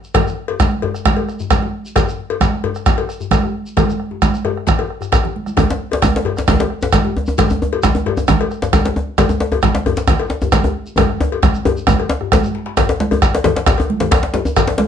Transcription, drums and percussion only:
0.04 shekere
0.14 bombo rim, bombo low, cowbell, djembe slap, djembe tone, high conga, djembe bass, low conga, shekere
0.27 shekere
0.48 cowbell, djembe tone
0.60 bombo rim, bombo low, djembe slap, high conga, low conga, shekere
0.82 cowbell, djembe slap, djembe tone, djembe bass
0.94 bombo rim, shekere
1.05 bombo rim, bombo low, djembe slap, high conga, low conga, shekere
1.17 cowbell, djembe tone
1.29 bombo rim, shekere
1.39 djembe slap, high conga, djembe bass, shekere
1.50 bombo rim, bombo low, cowbell, djembe slap, high conga, low conga, shekere
1.62 bombo rim, djembe tone
1.86 djembe slap, shekere
1.96 bombo rim, bombo low, cowbell, djembe slap, high conga, djembe tone, low conga, djembe bass, shekere
2.09 shekere
2.30 cowbell, djembe tone
2.41 bombo rim, bombo low, djembe slap, high conga, low conga, shekere
2.64 cowbell, djembe slap, djembe tone, djembe bass
2.75 bombo rim, shekere
2.86 bombo rim, bombo low, djembe slap, high conga, low conga, shekere
2.98 cowbell, djembe tone
3.09 bombo rim, shekere
3.21 djembe slap, high conga, djembe bass, shekere
3.31 bombo rim, bombo low, cowbell, djembe slap, high conga, low conga, shekere
3.43 bombo rim, djembe tone
3.65 djembe slap, shekere
3.77 bombo rim, bombo low, cowbell, djembe slap, djembe tone, high conga, djembe bass, low conga, shekere
3.88 bombo rim, djembe slap, shekere
4.00 bombo rim
4.11 djembe tone
4.22 bombo rim, bombo low, djembe slap, high conga, low conga, shekere
4.34 bombo rim, shekere
4.45 bombo rim, cowbell, djembe tone, djembe bass
4.57 bombo rim
4.67 bombo rim, bombo low, djembe slap, high conga, low conga, shekere
4.79 bombo rim, cowbell, djembe tone
4.90 bombo rim
5.01 bombo rim, djembe slap, djembe bass, shekere
5.12 bombo rim, bombo low, cowbell, djembe slap, low conga, shekere
5.23 bombo rim, djembe tone, low conga
5.36 high conga
5.46 bombo rim, high conga, shekere
5.57 bombo rim, bombo low, cowbell, djembe slap, djembe tone, high conga, djembe bass, low conga, shekere
5.70 djembe slap, shekere
5.91 cowbell, djembe slap, djembe tone
6.02 bombo rim, bombo low, djembe slap, high conga, djembe tone, low conga, shekere
6.16 djembe slap
6.25 cowbell, djembe slap, djembe tone, djembe bass
6.37 bombo rim, djembe slap, shekere
6.48 bombo rim, bombo low, djembe slap, djembe tone, high conga, low conga, shekere
6.59 cowbell, djembe slap, djembe tone
6.70 bombo rim
6.82 djembe slap, djembe bass, shekere
6.92 bombo rim, bombo low, cowbell, djembe slap, high conga, low conga, shekere
7.05 bombo rim, djembe tone
7.17 djembe tone
7.26 djembe slap, djembe tone, shekere
7.38 bombo rim, bombo low, cowbell, djembe slap, djembe tone, high conga, djembe bass, low conga, shekere
7.49 djembe tone, shekere
7.62 djembe tone
7.73 cowbell, djembe tone
7.83 bombo rim, bombo low, djembe slap, djembe tone, high conga, low conga, shekere
7.95 djembe tone
8.06 cowbell, djembe tone, djembe bass
8.17 bombo rim, djembe tone, shekere
8.28 bombo rim, bombo low, djembe slap, djembe tone, high conga, low conga, shekere
8.39 cowbell, djembe tone
8.51 bombo rim, shekere
8.62 djembe slap, high conga, djembe bass, shekere
8.73 bombo rim, bombo low, cowbell, djembe slap, high conga, djembe tone, low conga, shekere
8.85 bombo rim, djembe slap, djembe tone
8.96 djembe tone
9.07 djembe slap
9.18 bombo rim, bombo low, cowbell, djembe slap, high conga, djembe tone, low conga, djembe bass, shekere
9.29 djembe tone, shekere
9.40 djembe slap
9.52 cowbell, djembe tone
9.62 bombo rim, bombo low, djembe slap, high conga, low conga, shekere
9.75 djembe slap
9.86 cowbell, djembe slap, djembe tone, djembe bass
9.97 bombo rim, djembe slap, shekere
10.07 bombo rim, bombo low, djembe slap, djembe tone, high conga, low conga, shekere
10.20 cowbell, djembe tone
10.30 bombo rim, djembe slap, shekere
10.41 djembe tone, high conga, djembe bass, shekere
10.52 bombo rim, bombo low, cowbell, djembe slap, high conga, low conga, shekere
10.64 bombo rim, djembe tone
10.86 djembe slap, shekere
10.97 bombo rim, bombo low, cowbell, djembe slap, djembe tone, high conga, djembe bass, low conga, shekere
11.09 bombo rim
11.21 bombo rim, djembe tone
11.32 cowbell, djembe tone
11.43 bombo rim, bombo low, djembe slap, djembe tone, high conga, low conga, shekere
11.54 shekere
11.65 bombo rim, cowbell, djembe tone, djembe bass
11.77 shekere
11.87 bombo rim, bombo low, djembe slap, djembe tone, high conga, low conga, shekere
11.99 cowbell, djembe tone, high conga
12.09 djembe slap
12.21 bombo rim, djembe bass
12.32 bombo rim, bombo low, cowbell, djembe slap, high conga, low conga, shekere
12.44 djembe bass, shekere
12.55 djembe slap
12.66 bombo rim, djembe slap
12.77 bombo rim, bombo low, cowbell, djembe slap, djembe bass, low conga, shekere
12.89 djembe slap
13.00 djembe slap, high conga
13.11 cowbell, djembe tone
13.22 bombo rim, bombo low, djembe slap, shekere
13.34 bombo rim, djembe slap, high conga
13.44 cowbell, djembe slap, high conga, djembe bass, low conga
13.56 bombo rim, djembe slap
13.66 bombo rim, bombo low, djembe slap, djembe tone, shekere
13.78 cowbell, djembe tone
13.90 high conga
14.00 bombo rim, djembe slap, djembe bass, low conga
14.11 bombo rim, bombo low, cowbell, djembe slap, shekere
14.23 bombo rim, djembe slap
14.34 djembe slap, djembe tone, high conga
14.45 djembe tone, shekere
14.56 bombo rim, bombo low, cowbell, djembe slap, djembe bass, low conga, shekere
14.67 djembe slap
14.78 djembe slap, high conga

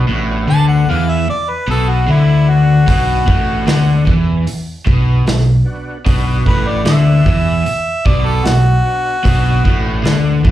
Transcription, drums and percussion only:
2.88 kick, open hi-hat
3.28 kick
3.67 snare, open hi-hat
4.07 kick
4.47 open hi-hat
4.87 kick
5.27 snare, open hi-hat
6.06 kick, open hi-hat
6.46 kick
6.85 snare, open hi-hat
7.26 kick
7.66 open hi-hat
8.06 kick
8.45 snare, open hi-hat
9.25 kick, open hi-hat
9.65 kick
10.05 snare, open hi-hat
10.45 kick

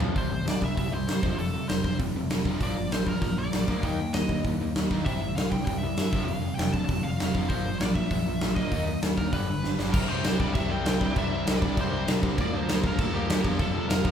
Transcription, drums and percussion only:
0.00 floor tom
0.16 kick, open hi-hat
0.47 snare, open hi-hat
0.62 kick
0.77 kick, open hi-hat
1.08 snare, open hi-hat
1.23 kick
1.38 open hi-hat
1.69 snare, open hi-hat
1.84 kick
1.99 kick, open hi-hat
2.30 snare, open hi-hat
2.45 kick
2.60 kick, open hi-hat
2.91 snare, open hi-hat
3.07 kick
3.22 kick, open hi-hat
3.52 snare, open hi-hat
3.68 kick
3.83 kick, open hi-hat
4.13 snare, open hi-hat
4.29 kick
4.45 kick, open hi-hat
4.75 snare, open hi-hat
4.91 kick
5.06 kick, open hi-hat
5.37 snare, open hi-hat
5.52 kick
5.67 kick, open hi-hat
5.97 snare, open hi-hat
6.13 kick
6.28 open hi-hat
6.59 snare, open hi-hat
6.74 kick
6.88 kick, open hi-hat
7.20 snare, open hi-hat
7.35 kick
7.49 kick, open hi-hat
7.80 snare, open hi-hat
7.95 kick
8.11 kick, open hi-hat
8.41 snare, open hi-hat
8.56 kick
8.72 kick, open hi-hat
9.02 snare, open hi-hat
9.18 kick
9.33 kick, open hi-hat
9.64 snare
9.79 snare
9.94 kick, crash
10.24 snare, crash
10.40 kick
10.55 kick, crash
10.86 snare, crash
11.01 kick
11.16 kick, crash
11.47 snare, crash
11.62 kick
11.77 kick, crash
12.08 snare, crash
12.23 kick
12.38 kick, crash
12.69 snare, crash
12.84 kick
12.99 kick, crash
13.30 snare, crash
13.45 kick
13.59 kick, crash
13.90 snare, crash
14.05 kick

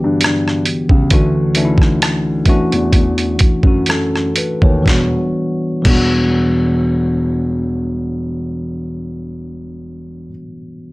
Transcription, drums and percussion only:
0.21 cross-stick, closed hi-hat
0.48 cross-stick
0.66 closed hi-hat
0.89 kick
1.10 kick, closed hi-hat
1.55 closed hi-hat
1.78 kick, cross-stick
2.02 cross-stick, closed hi-hat
2.45 kick, closed hi-hat
2.72 closed hi-hat
2.93 kick, closed hi-hat
3.18 closed hi-hat
3.39 kick, closed hi-hat
3.63 kick
3.86 cross-stick, closed hi-hat
4.16 cross-stick
4.36 closed hi-hat
4.62 kick
4.86 kick, snare
5.85 kick, crash

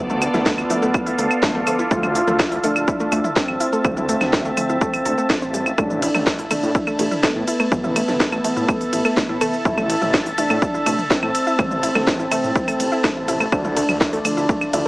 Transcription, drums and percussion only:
0.10 mid tom, shaker
0.22 open hi-hat, claves, shaker
0.34 snare, mid tom, shaker
0.46 kick, snare, shaker
0.58 claves, shaker
0.70 open hi-hat, shaker
0.82 shaker
0.94 kick, claves, shaker
1.07 open hi-hat, shaker
1.19 open hi-hat, shaker
1.31 claves, shaker
1.43 kick, snare, shaker
1.67 open hi-hat, claves, shaker
1.79 shaker
1.91 kick, shaker
2.03 mid tom, claves, shaker
2.15 open hi-hat, shaker
2.27 mid tom, shaker
2.39 kick, snare, claves, shaker
2.52 open hi-hat
2.64 open hi-hat, shaker
2.76 claves, shaker
2.88 kick, shaker
3.00 shaker
3.12 open hi-hat, claves, shaker
3.24 mid tom, shaker
3.36 kick, snare, shaker
3.48 claves
3.60 open hi-hat, shaker
3.73 shaker
3.85 kick, claves, shaker
3.97 mid tom, shaker
4.09 open hi-hat, shaker
4.21 snare, mid tom, claves, shaker
4.33 kick, snare, shaker
4.45 shaker
4.57 open hi-hat, claves, shaker
4.69 shaker
4.81 kick, shaker
4.94 open hi-hat, claves, shaker
5.06 open hi-hat, shaker
5.18 shaker
5.30 kick, snare, claves, shaker
5.42 shaker
5.54 open hi-hat, shaker
5.66 claves, shaker
5.78 kick, claves, shaker
5.90 mid tom, shaker
6.02 open hi-hat, ride, shaker
6.15 mid tom, claves, shaker
6.27 kick, snare, shaker
6.39 open hi-hat
6.51 open hi-hat, ride, claves, shaker
6.63 shaker
6.75 kick, shaker
6.87 claves, shaker
6.99 open hi-hat, ride, shaker
7.11 mid tom, shaker
7.23 kick, snare, claves, shaker
7.48 open hi-hat, ride, shaker
7.60 claves, shaker
7.72 kick, shaker
7.84 mid tom, shaker
7.96 open hi-hat, ride, claves, shaker
8.08 snare, mid tom, shaker
8.20 kick, snare, shaker
8.32 claves, shaker
8.44 open hi-hat, ride, shaker
8.57 shaker
8.69 kick, claves, shaker
8.81 open hi-hat, shaker
8.93 open hi-hat, ride, shaker
9.05 claves, shaker
9.17 kick, snare, shaker
9.41 open hi-hat, ride, claves, shaker
9.53 shaker
9.65 kick, shaker
9.78 mid tom, claves, shaker
9.90 open hi-hat, ride, shaker
10.02 mid tom, shaker
10.14 kick, snare, claves, shaker
10.26 open hi-hat
10.38 open hi-hat, ride, shaker
10.50 claves, shaker
10.62 kick, shaker
10.74 shaker
10.86 open hi-hat, ride, claves, shaker
10.99 mid tom, shaker
11.10 kick, snare, shaker
11.23 claves
11.35 open hi-hat, ride, shaker
11.47 shaker
11.59 kick, claves, shaker
11.71 mid tom, shaker
11.83 open hi-hat, ride, shaker
11.95 snare, mid tom, claves, shaker
12.07 kick, snare, shaker
12.19 shaker
12.32 open hi-hat, ride, claves, shaker
12.44 shaker
12.56 kick, shaker
12.68 open hi-hat, claves, shaker
12.80 open hi-hat, ride, shaker
12.92 shaker
13.04 kick, snare, claves, shaker
13.28 open hi-hat, ride, shaker
13.40 claves, shaker
13.52 kick, claves, shaker
13.65 mid tom, shaker
13.77 open hi-hat, ride, shaker
13.89 mid tom, claves, shaker
14.01 kick, snare, shaker
14.13 open hi-hat
14.25 open hi-hat, ride, claves, shaker
14.37 shaker
14.49 kick, shaker
14.61 claves, shaker
14.73 open hi-hat, ride, shaker

